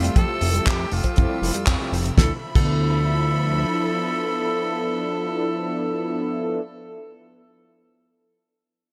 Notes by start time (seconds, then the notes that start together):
Already playing: F1 F3 A3 C4 E4 F4 G4 A4 G5 E6
0.03 G3, closed hi-hat
0.16 F2 C3 A4, kick, closed hi-hat
0.28 F3
0.41 F1 C3, open hi-hat
0.53 F3 G3 A3 C4 E4 G4, closed hi-hat
0.66 F2 C3 G4, kick, clap, closed hi-hat
0.79 A3
0.91 F1 C3 F4, open hi-hat
1.04 F3, kick, closed hi-hat
1.16 F2 C3 F3 A3 C4 E4 G4, kick, closed hi-hat
1.29 G3
1.41 F1 F3 G3 A3 C4 E4 G4, open hi-hat
1.54 F2 G3, closed hi-hat
1.67 F2 C4, kick, clap, closed hi-hat
1.79 C3 F3 A3 C4 E4 G4
1.92 F1 F3, open hi-hat
2.05 C3, closed hi-hat
2.16 D2 B2 F3 B3 D4 E4 A4 E5 B5, kick, snare
2.54 D2 B2 F3 B3 D4 E4 A4, kick, crash